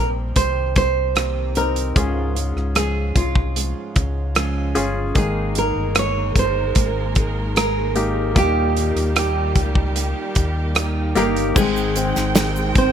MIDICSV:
0, 0, Header, 1, 7, 480
1, 0, Start_track
1, 0, Key_signature, -4, "major"
1, 0, Tempo, 800000
1, 1177, Time_signature, 4, 2, 24, 8
1, 7753, End_track
2, 0, Start_track
2, 0, Title_t, "Nylon-string guitar"
2, 0, Program_c, 0, 24
2, 217, Note_on_c, 0, 72, 93
2, 457, Note_off_c, 0, 72, 0
2, 464, Note_on_c, 0, 72, 83
2, 938, Note_off_c, 0, 72, 0
2, 940, Note_on_c, 0, 70, 75
2, 1395, Note_off_c, 0, 70, 0
2, 1654, Note_on_c, 0, 68, 84
2, 1902, Note_on_c, 0, 65, 76
2, 1903, Note_off_c, 0, 68, 0
2, 2836, Note_off_c, 0, 65, 0
2, 3109, Note_on_c, 0, 68, 78
2, 3348, Note_off_c, 0, 68, 0
2, 3350, Note_on_c, 0, 70, 78
2, 3591, Note_off_c, 0, 70, 0
2, 3594, Note_on_c, 0, 73, 92
2, 3831, Note_off_c, 0, 73, 0
2, 3834, Note_on_c, 0, 72, 76
2, 4281, Note_off_c, 0, 72, 0
2, 4542, Note_on_c, 0, 70, 98
2, 5027, Note_off_c, 0, 70, 0
2, 5030, Note_on_c, 0, 67, 94
2, 5504, Note_off_c, 0, 67, 0
2, 5511, Note_on_c, 0, 67, 76
2, 6680, Note_off_c, 0, 67, 0
2, 6703, Note_on_c, 0, 70, 96
2, 6709, Note_on_c, 0, 58, 72
2, 6924, Note_off_c, 0, 70, 0
2, 6927, Note_off_c, 0, 58, 0
2, 6945, Note_on_c, 0, 68, 97
2, 6951, Note_on_c, 0, 56, 72
2, 7397, Note_off_c, 0, 68, 0
2, 7400, Note_off_c, 0, 56, 0
2, 7667, Note_on_c, 0, 60, 66
2, 7668, Note_on_c, 0, 72, 83
2, 7753, Note_off_c, 0, 60, 0
2, 7753, Note_off_c, 0, 72, 0
2, 7753, End_track
3, 0, Start_track
3, 0, Title_t, "Grand piano"
3, 0, Program_c, 1, 0
3, 0, Control_c, 1, 64, 127
3, 0, Note_on_c, 1, 43, 52
3, 0, Note_on_c, 1, 60, 58
3, 0, Note_on_c, 1, 63, 58
3, 0, Note_on_c, 1, 70, 64
3, 167, Note_off_c, 1, 60, 0
3, 170, Note_off_c, 1, 63, 0
3, 170, Note_off_c, 1, 70, 0
3, 941, Note_on_c, 1, 60, 60
3, 941, Note_on_c, 1, 63, 57
3, 942, Note_on_c, 1, 70, 65
3, 1167, Note_off_c, 1, 60, 0
3, 1167, Note_off_c, 1, 63, 0
3, 1168, Note_off_c, 1, 70, 0
3, 1175, Note_on_c, 1, 61, 64
3, 1176, Note_on_c, 1, 44, 54
3, 1178, Note_on_c, 1, 65, 59
3, 1178, Note_on_c, 1, 68, 70
3, 1184, Control_c, 1, 64, 0
3, 1189, Note_off_c, 1, 43, 0
3, 1283, Control_c, 1, 64, 127
3, 1873, Note_off_c, 1, 44, 0
3, 2088, Note_off_c, 1, 61, 0
3, 2089, Note_off_c, 1, 65, 0
3, 2090, Note_off_c, 1, 68, 0
3, 2849, Note_on_c, 1, 61, 78
3, 2851, Note_on_c, 1, 65, 70
3, 2851, Note_on_c, 1, 68, 85
3, 3081, Note_off_c, 1, 61, 0
3, 3082, Note_off_c, 1, 65, 0
3, 3082, Note_off_c, 1, 68, 0
3, 3088, Note_on_c, 1, 58, 63
3, 3090, Note_on_c, 1, 51, 55
3, 3090, Note_on_c, 1, 56, 59
3, 3092, Note_on_c, 1, 63, 58
3, 3095, Note_on_c, 1, 68, 73
3, 3105, Control_c, 1, 64, 0
3, 3219, Control_c, 1, 64, 127
3, 3789, Note_off_c, 1, 51, 0
3, 3789, Note_off_c, 1, 56, 0
3, 4004, Note_off_c, 1, 58, 0
3, 4006, Note_off_c, 1, 63, 0
3, 4008, Note_off_c, 1, 68, 0
3, 4772, Note_on_c, 1, 58, 69
3, 4774, Note_on_c, 1, 63, 61
3, 4776, Note_on_c, 1, 67, 73
3, 5001, Note_off_c, 1, 58, 0
3, 5003, Note_off_c, 1, 63, 0
3, 5004, Note_off_c, 1, 67, 0
3, 5010, Note_on_c, 1, 58, 69
3, 5011, Note_on_c, 1, 46, 56
3, 5012, Note_on_c, 1, 63, 57
3, 5013, Note_on_c, 1, 67, 76
3, 5024, Control_c, 1, 64, 0
3, 5134, Control_c, 1, 64, 127
3, 5710, Note_off_c, 1, 46, 0
3, 5925, Note_off_c, 1, 58, 0
3, 5926, Note_off_c, 1, 63, 0
3, 5927, Note_off_c, 1, 67, 0
3, 6692, Note_on_c, 1, 58, 82
3, 6696, Note_on_c, 1, 63, 75
3, 6699, Note_on_c, 1, 67, 92
3, 6922, Note_off_c, 1, 58, 0
3, 6925, Note_off_c, 1, 63, 0
3, 6926, Note_off_c, 1, 67, 0
3, 6933, Note_on_c, 1, 56, 71
3, 6934, Note_on_c, 1, 44, 63
3, 6936, Note_on_c, 1, 60, 67
3, 6938, Note_on_c, 1, 51, 60
3, 6938, Note_on_c, 1, 79, 75
3, 6946, Control_c, 1, 64, 0
3, 7040, Control_c, 1, 64, 127
3, 7163, Note_off_c, 1, 56, 0
3, 7164, Note_off_c, 1, 60, 0
3, 7166, Note_off_c, 1, 79, 0
3, 7175, Note_on_c, 1, 56, 68
3, 7178, Note_on_c, 1, 60, 60
3, 7182, Note_on_c, 1, 79, 70
3, 7631, Note_off_c, 1, 44, 0
3, 7633, Note_off_c, 1, 51, 0
3, 7753, Note_off_c, 1, 56, 0
3, 7753, Note_off_c, 1, 60, 0
3, 7753, Note_off_c, 1, 79, 0
3, 7753, End_track
4, 0, Start_track
4, 0, Title_t, "Steel-string acoustic guitar"
4, 0, Program_c, 2, 25
4, 0, Note_on_c, 2, 58, 34
4, 0, Note_on_c, 2, 60, 36
4, 0, Note_on_c, 2, 67, 43
4, 208, Note_off_c, 2, 58, 0
4, 209, Note_on_c, 2, 51, 48
4, 211, Note_off_c, 2, 67, 0
4, 213, Note_off_c, 2, 60, 0
4, 216, Note_on_c, 2, 58, 46
4, 220, Note_on_c, 2, 60, 57
4, 224, Note_on_c, 2, 67, 58
4, 444, Note_off_c, 2, 67, 0
4, 451, Note_on_c, 2, 67, 47
4, 452, Note_off_c, 2, 60, 0
4, 453, Note_off_c, 2, 51, 0
4, 456, Note_off_c, 2, 58, 0
4, 460, Note_on_c, 2, 60, 39
4, 467, Note_on_c, 2, 58, 38
4, 687, Note_off_c, 2, 58, 0
4, 689, Note_on_c, 2, 48, 70
4, 691, Note_off_c, 2, 60, 0
4, 694, Note_off_c, 2, 67, 0
4, 694, Note_on_c, 2, 51, 61
4, 694, Note_on_c, 2, 58, 69
4, 698, Note_on_c, 2, 60, 74
4, 700, Note_on_c, 2, 67, 65
4, 1170, Note_off_c, 2, 48, 0
4, 1172, Note_on_c, 2, 49, 60
4, 1173, Note_off_c, 2, 51, 0
4, 1176, Note_off_c, 2, 58, 0
4, 1176, Note_on_c, 2, 53, 60
4, 1178, Note_off_c, 2, 60, 0
4, 1179, Note_off_c, 2, 67, 0
4, 1179, Note_on_c, 2, 56, 62
4, 1182, Note_on_c, 2, 61, 60
4, 1184, Note_on_c, 2, 65, 72
4, 1403, Note_off_c, 2, 65, 0
4, 1410, Note_on_c, 2, 65, 43
4, 1411, Note_off_c, 2, 61, 0
4, 1414, Note_off_c, 2, 49, 0
4, 1416, Note_off_c, 2, 53, 0
4, 1418, Note_off_c, 2, 56, 0
4, 1419, Note_on_c, 2, 61, 41
4, 1425, Note_on_c, 2, 56, 37
4, 1648, Note_off_c, 2, 56, 0
4, 1649, Note_on_c, 2, 49, 66
4, 1651, Note_off_c, 2, 61, 0
4, 1654, Note_off_c, 2, 65, 0
4, 1654, Note_on_c, 2, 53, 61
4, 1656, Note_on_c, 2, 56, 68
4, 1658, Note_on_c, 2, 61, 74
4, 1660, Note_on_c, 2, 65, 69
4, 1879, Note_off_c, 2, 65, 0
4, 1886, Note_on_c, 2, 65, 43
4, 1888, Note_off_c, 2, 61, 0
4, 1893, Note_off_c, 2, 49, 0
4, 1895, Note_off_c, 2, 53, 0
4, 1895, Note_on_c, 2, 61, 38
4, 1896, Note_off_c, 2, 56, 0
4, 1903, Note_on_c, 2, 56, 36
4, 2126, Note_off_c, 2, 56, 0
4, 2127, Note_on_c, 2, 53, 49
4, 2130, Note_off_c, 2, 61, 0
4, 2132, Note_off_c, 2, 65, 0
4, 2133, Note_on_c, 2, 56, 50
4, 2138, Note_on_c, 2, 61, 57
4, 2143, Note_on_c, 2, 65, 59
4, 2359, Note_off_c, 2, 65, 0
4, 2366, Note_on_c, 2, 65, 44
4, 2368, Note_off_c, 2, 61, 0
4, 2372, Note_off_c, 2, 53, 0
4, 2375, Note_off_c, 2, 56, 0
4, 2376, Note_on_c, 2, 61, 41
4, 2382, Note_on_c, 2, 56, 38
4, 2605, Note_off_c, 2, 56, 0
4, 2607, Note_on_c, 2, 49, 67
4, 2608, Note_off_c, 2, 61, 0
4, 2611, Note_off_c, 2, 65, 0
4, 2611, Note_on_c, 2, 53, 72
4, 2613, Note_on_c, 2, 56, 76
4, 2616, Note_on_c, 2, 61, 86
4, 2619, Note_on_c, 2, 65, 81
4, 3086, Note_off_c, 2, 53, 0
4, 3089, Note_off_c, 2, 56, 0
4, 3089, Note_on_c, 2, 56, 61
4, 3092, Note_off_c, 2, 49, 0
4, 3093, Note_on_c, 2, 58, 68
4, 3094, Note_off_c, 2, 61, 0
4, 3096, Note_on_c, 2, 63, 67
4, 3097, Note_off_c, 2, 65, 0
4, 3100, Note_on_c, 2, 68, 74
4, 3316, Note_off_c, 2, 68, 0
4, 3324, Note_on_c, 2, 68, 52
4, 3328, Note_off_c, 2, 63, 0
4, 3333, Note_off_c, 2, 56, 0
4, 3333, Note_off_c, 2, 58, 0
4, 3335, Note_on_c, 2, 63, 43
4, 3340, Note_on_c, 2, 58, 36
4, 3567, Note_off_c, 2, 58, 0
4, 3570, Note_off_c, 2, 68, 0
4, 3570, Note_on_c, 2, 56, 66
4, 3571, Note_off_c, 2, 63, 0
4, 3574, Note_on_c, 2, 58, 72
4, 3578, Note_on_c, 2, 63, 75
4, 3582, Note_on_c, 2, 68, 73
4, 3802, Note_off_c, 2, 68, 0
4, 3809, Note_on_c, 2, 68, 45
4, 3812, Note_off_c, 2, 63, 0
4, 3814, Note_off_c, 2, 56, 0
4, 3816, Note_off_c, 2, 58, 0
4, 3819, Note_on_c, 2, 63, 43
4, 3825, Note_on_c, 2, 58, 37
4, 4048, Note_off_c, 2, 58, 0
4, 4049, Note_on_c, 2, 56, 53
4, 4053, Note_off_c, 2, 68, 0
4, 4054, Note_off_c, 2, 63, 0
4, 4056, Note_on_c, 2, 58, 53
4, 4061, Note_on_c, 2, 63, 52
4, 4065, Note_on_c, 2, 68, 54
4, 4281, Note_off_c, 2, 68, 0
4, 4288, Note_on_c, 2, 68, 48
4, 4291, Note_off_c, 2, 63, 0
4, 4293, Note_off_c, 2, 56, 0
4, 4296, Note_off_c, 2, 58, 0
4, 4298, Note_on_c, 2, 63, 44
4, 4306, Note_on_c, 2, 58, 41
4, 4527, Note_off_c, 2, 58, 0
4, 4530, Note_on_c, 2, 56, 72
4, 4532, Note_off_c, 2, 63, 0
4, 4533, Note_off_c, 2, 68, 0
4, 4535, Note_on_c, 2, 58, 71
4, 4540, Note_on_c, 2, 63, 77
4, 4543, Note_on_c, 2, 68, 80
4, 5009, Note_off_c, 2, 56, 0
4, 5009, Note_on_c, 2, 51, 65
4, 5012, Note_off_c, 2, 58, 0
4, 5012, Note_on_c, 2, 55, 67
4, 5014, Note_off_c, 2, 63, 0
4, 5015, Note_on_c, 2, 58, 63
4, 5017, Note_on_c, 2, 63, 73
4, 5018, Note_off_c, 2, 68, 0
4, 5020, Note_on_c, 2, 67, 72
4, 5242, Note_off_c, 2, 67, 0
4, 5249, Note_on_c, 2, 67, 50
4, 5250, Note_off_c, 2, 63, 0
4, 5253, Note_off_c, 2, 51, 0
4, 5254, Note_off_c, 2, 55, 0
4, 5256, Note_off_c, 2, 58, 0
4, 5257, Note_on_c, 2, 63, 43
4, 5264, Note_on_c, 2, 58, 41
4, 5489, Note_off_c, 2, 58, 0
4, 5490, Note_on_c, 2, 51, 72
4, 5493, Note_off_c, 2, 67, 0
4, 5494, Note_off_c, 2, 63, 0
4, 5494, Note_on_c, 2, 55, 76
4, 5497, Note_on_c, 2, 58, 67
4, 5501, Note_on_c, 2, 63, 74
4, 5501, Note_on_c, 2, 67, 77
4, 5722, Note_off_c, 2, 67, 0
4, 5730, Note_on_c, 2, 67, 48
4, 5733, Note_off_c, 2, 51, 0
4, 5733, Note_off_c, 2, 63, 0
4, 5736, Note_off_c, 2, 55, 0
4, 5737, Note_off_c, 2, 58, 0
4, 5740, Note_on_c, 2, 63, 43
4, 5746, Note_on_c, 2, 58, 39
4, 5967, Note_off_c, 2, 58, 0
4, 5968, Note_on_c, 2, 55, 55
4, 5972, Note_off_c, 2, 63, 0
4, 5973, Note_off_c, 2, 67, 0
4, 5975, Note_on_c, 2, 58, 61
4, 5979, Note_on_c, 2, 63, 57
4, 5983, Note_on_c, 2, 67, 67
4, 6199, Note_off_c, 2, 67, 0
4, 6206, Note_on_c, 2, 67, 53
4, 6208, Note_off_c, 2, 63, 0
4, 6212, Note_off_c, 2, 55, 0
4, 6215, Note_on_c, 2, 63, 48
4, 6216, Note_off_c, 2, 58, 0
4, 6224, Note_on_c, 2, 58, 46
4, 6446, Note_off_c, 2, 58, 0
4, 6448, Note_on_c, 2, 51, 86
4, 6450, Note_off_c, 2, 63, 0
4, 6452, Note_off_c, 2, 67, 0
4, 6452, Note_on_c, 2, 55, 82
4, 6454, Note_on_c, 2, 58, 81
4, 6457, Note_on_c, 2, 63, 85
4, 6461, Note_on_c, 2, 67, 81
4, 6924, Note_off_c, 2, 55, 0
4, 6926, Note_on_c, 2, 56, 71
4, 6930, Note_off_c, 2, 58, 0
4, 6932, Note_off_c, 2, 63, 0
4, 6932, Note_on_c, 2, 60, 71
4, 6934, Note_on_c, 2, 63, 71
4, 6944, Note_off_c, 2, 67, 0
4, 7171, Note_off_c, 2, 56, 0
4, 7172, Note_off_c, 2, 63, 0
4, 7175, Note_off_c, 2, 60, 0
4, 7179, Note_on_c, 2, 63, 46
4, 7186, Note_on_c, 2, 60, 40
4, 7407, Note_off_c, 2, 60, 0
4, 7411, Note_off_c, 2, 63, 0
4, 7411, Note_on_c, 2, 56, 78
4, 7414, Note_on_c, 2, 60, 69
4, 7419, Note_on_c, 2, 63, 86
4, 7422, Note_on_c, 2, 67, 87
4, 7753, Note_off_c, 2, 51, 0
4, 7753, Note_off_c, 2, 56, 0
4, 7753, Note_off_c, 2, 60, 0
4, 7753, Note_off_c, 2, 63, 0
4, 7753, Note_off_c, 2, 67, 0
4, 7753, End_track
5, 0, Start_track
5, 0, Title_t, "String section"
5, 0, Program_c, 3, 48
5, 3090, Note_on_c, 3, 56, 67
5, 3090, Note_on_c, 3, 70, 84
5, 3091, Note_on_c, 3, 58, 66
5, 3092, Note_on_c, 3, 51, 71
5, 4994, Note_off_c, 3, 56, 0
5, 4994, Note_off_c, 3, 70, 0
5, 5010, Note_on_c, 3, 67, 83
5, 5011, Note_on_c, 3, 55, 71
5, 6910, Note_off_c, 3, 51, 0
5, 6910, Note_off_c, 3, 58, 0
5, 6914, Note_off_c, 3, 67, 0
5, 6915, Note_off_c, 3, 55, 0
5, 6935, Note_on_c, 3, 51, 82
5, 6937, Note_on_c, 3, 60, 73
5, 6938, Note_on_c, 3, 79, 88
5, 6939, Note_on_c, 3, 56, 74
5, 7753, Note_off_c, 3, 51, 0
5, 7753, Note_off_c, 3, 56, 0
5, 7753, Note_off_c, 3, 60, 0
5, 7753, Note_off_c, 3, 79, 0
5, 7753, End_track
6, 0, Start_track
6, 0, Title_t, "Fingered electric bass"
6, 0, Program_c, 4, 33
6, 0, Note_on_c, 4, 34, 74
6, 199, Note_off_c, 4, 34, 0
6, 217, Note_on_c, 4, 36, 89
6, 1153, Note_off_c, 4, 36, 0
6, 1174, Note_on_c, 4, 37, 81
6, 1512, Note_off_c, 4, 37, 0
6, 1536, Note_on_c, 4, 37, 76
6, 1872, Note_off_c, 4, 37, 0
6, 1893, Note_on_c, 4, 36, 71
6, 2231, Note_off_c, 4, 36, 0
6, 2376, Note_on_c, 4, 37, 79
6, 2833, Note_off_c, 4, 37, 0
6, 2853, Note_on_c, 4, 31, 83
6, 3078, Note_off_c, 4, 31, 0
6, 3092, Note_on_c, 4, 32, 90
6, 3431, Note_off_c, 4, 32, 0
6, 3454, Note_on_c, 4, 31, 64
6, 3792, Note_off_c, 4, 31, 0
6, 3813, Note_on_c, 4, 31, 79
6, 4038, Note_off_c, 4, 31, 0
6, 4053, Note_on_c, 4, 32, 85
6, 5016, Note_on_c, 4, 39, 103
6, 5025, Note_off_c, 4, 32, 0
6, 5352, Note_off_c, 4, 39, 0
6, 5372, Note_on_c, 4, 39, 74
6, 5711, Note_off_c, 4, 39, 0
6, 5733, Note_on_c, 4, 37, 90
6, 6071, Note_off_c, 4, 37, 0
6, 6215, Note_on_c, 4, 39, 82
6, 6672, Note_off_c, 4, 39, 0
6, 6692, Note_on_c, 4, 31, 86
6, 6917, Note_off_c, 4, 31, 0
6, 6935, Note_on_c, 4, 32, 96
6, 7272, Note_off_c, 4, 32, 0
6, 7298, Note_on_c, 4, 32, 84
6, 7633, Note_off_c, 4, 32, 0
6, 7652, Note_on_c, 4, 32, 97
6, 7753, Note_off_c, 4, 32, 0
6, 7753, End_track
7, 0, Start_track
7, 0, Title_t, "Drums"
7, 214, Note_on_c, 9, 42, 81
7, 217, Note_on_c, 9, 36, 72
7, 274, Note_off_c, 9, 42, 0
7, 277, Note_off_c, 9, 36, 0
7, 454, Note_on_c, 9, 42, 60
7, 457, Note_on_c, 9, 36, 72
7, 514, Note_off_c, 9, 42, 0
7, 517, Note_off_c, 9, 36, 0
7, 694, Note_on_c, 9, 42, 64
7, 700, Note_on_c, 9, 37, 93
7, 754, Note_off_c, 9, 42, 0
7, 760, Note_off_c, 9, 37, 0
7, 932, Note_on_c, 9, 42, 63
7, 992, Note_off_c, 9, 42, 0
7, 1057, Note_on_c, 9, 42, 51
7, 1117, Note_off_c, 9, 42, 0
7, 1175, Note_on_c, 9, 42, 63
7, 1176, Note_on_c, 9, 36, 91
7, 1235, Note_off_c, 9, 42, 0
7, 1236, Note_off_c, 9, 36, 0
7, 1418, Note_on_c, 9, 42, 63
7, 1478, Note_off_c, 9, 42, 0
7, 1541, Note_on_c, 9, 37, 28
7, 1601, Note_off_c, 9, 37, 0
7, 1652, Note_on_c, 9, 42, 76
7, 1657, Note_on_c, 9, 37, 96
7, 1712, Note_off_c, 9, 42, 0
7, 1717, Note_off_c, 9, 37, 0
7, 1894, Note_on_c, 9, 36, 76
7, 1894, Note_on_c, 9, 42, 55
7, 1954, Note_off_c, 9, 36, 0
7, 1954, Note_off_c, 9, 42, 0
7, 2013, Note_on_c, 9, 36, 74
7, 2073, Note_off_c, 9, 36, 0
7, 2138, Note_on_c, 9, 42, 83
7, 2198, Note_off_c, 9, 42, 0
7, 2374, Note_on_c, 9, 42, 62
7, 2377, Note_on_c, 9, 36, 70
7, 2434, Note_off_c, 9, 42, 0
7, 2437, Note_off_c, 9, 36, 0
7, 2611, Note_on_c, 9, 42, 65
7, 2618, Note_on_c, 9, 37, 100
7, 2671, Note_off_c, 9, 42, 0
7, 2678, Note_off_c, 9, 37, 0
7, 2852, Note_on_c, 9, 42, 64
7, 2912, Note_off_c, 9, 42, 0
7, 3090, Note_on_c, 9, 42, 63
7, 3093, Note_on_c, 9, 36, 85
7, 3150, Note_off_c, 9, 42, 0
7, 3153, Note_off_c, 9, 36, 0
7, 3331, Note_on_c, 9, 42, 63
7, 3391, Note_off_c, 9, 42, 0
7, 3570, Note_on_c, 9, 42, 77
7, 3574, Note_on_c, 9, 37, 98
7, 3630, Note_off_c, 9, 42, 0
7, 3634, Note_off_c, 9, 37, 0
7, 3813, Note_on_c, 9, 36, 79
7, 3816, Note_on_c, 9, 42, 60
7, 3873, Note_off_c, 9, 36, 0
7, 3876, Note_off_c, 9, 42, 0
7, 4051, Note_on_c, 9, 42, 82
7, 4055, Note_on_c, 9, 36, 78
7, 4111, Note_off_c, 9, 42, 0
7, 4115, Note_off_c, 9, 36, 0
7, 4292, Note_on_c, 9, 42, 65
7, 4297, Note_on_c, 9, 36, 70
7, 4352, Note_off_c, 9, 42, 0
7, 4357, Note_off_c, 9, 36, 0
7, 4538, Note_on_c, 9, 42, 68
7, 4544, Note_on_c, 9, 37, 103
7, 4598, Note_off_c, 9, 42, 0
7, 4604, Note_off_c, 9, 37, 0
7, 4773, Note_on_c, 9, 42, 64
7, 4833, Note_off_c, 9, 42, 0
7, 5015, Note_on_c, 9, 42, 64
7, 5016, Note_on_c, 9, 36, 92
7, 5075, Note_off_c, 9, 42, 0
7, 5076, Note_off_c, 9, 36, 0
7, 5259, Note_on_c, 9, 42, 59
7, 5319, Note_off_c, 9, 42, 0
7, 5379, Note_on_c, 9, 37, 30
7, 5380, Note_on_c, 9, 42, 48
7, 5439, Note_off_c, 9, 37, 0
7, 5440, Note_off_c, 9, 42, 0
7, 5495, Note_on_c, 9, 42, 78
7, 5499, Note_on_c, 9, 37, 107
7, 5555, Note_off_c, 9, 42, 0
7, 5559, Note_off_c, 9, 37, 0
7, 5732, Note_on_c, 9, 42, 57
7, 5734, Note_on_c, 9, 36, 80
7, 5792, Note_off_c, 9, 42, 0
7, 5794, Note_off_c, 9, 36, 0
7, 5853, Note_on_c, 9, 36, 78
7, 5913, Note_off_c, 9, 36, 0
7, 5975, Note_on_c, 9, 42, 87
7, 6035, Note_off_c, 9, 42, 0
7, 6211, Note_on_c, 9, 42, 64
7, 6217, Note_on_c, 9, 36, 75
7, 6271, Note_off_c, 9, 42, 0
7, 6277, Note_off_c, 9, 36, 0
7, 6450, Note_on_c, 9, 42, 70
7, 6457, Note_on_c, 9, 37, 102
7, 6510, Note_off_c, 9, 42, 0
7, 6517, Note_off_c, 9, 37, 0
7, 6693, Note_on_c, 9, 42, 70
7, 6753, Note_off_c, 9, 42, 0
7, 6819, Note_on_c, 9, 42, 54
7, 6879, Note_off_c, 9, 42, 0
7, 6935, Note_on_c, 9, 49, 86
7, 6936, Note_on_c, 9, 36, 99
7, 6940, Note_on_c, 9, 82, 70
7, 6995, Note_off_c, 9, 49, 0
7, 6996, Note_off_c, 9, 36, 0
7, 7000, Note_off_c, 9, 82, 0
7, 7060, Note_on_c, 9, 82, 40
7, 7120, Note_off_c, 9, 82, 0
7, 7174, Note_on_c, 9, 42, 69
7, 7180, Note_on_c, 9, 82, 47
7, 7234, Note_off_c, 9, 42, 0
7, 7240, Note_off_c, 9, 82, 0
7, 7296, Note_on_c, 9, 38, 32
7, 7297, Note_on_c, 9, 42, 55
7, 7299, Note_on_c, 9, 82, 47
7, 7356, Note_off_c, 9, 38, 0
7, 7357, Note_off_c, 9, 42, 0
7, 7359, Note_off_c, 9, 82, 0
7, 7409, Note_on_c, 9, 42, 83
7, 7413, Note_on_c, 9, 38, 104
7, 7415, Note_on_c, 9, 82, 66
7, 7469, Note_off_c, 9, 42, 0
7, 7473, Note_off_c, 9, 38, 0
7, 7475, Note_off_c, 9, 82, 0
7, 7537, Note_on_c, 9, 82, 42
7, 7597, Note_off_c, 9, 82, 0
7, 7652, Note_on_c, 9, 42, 61
7, 7653, Note_on_c, 9, 36, 89
7, 7712, Note_off_c, 9, 42, 0
7, 7713, Note_off_c, 9, 36, 0
7, 7753, End_track
0, 0, End_of_file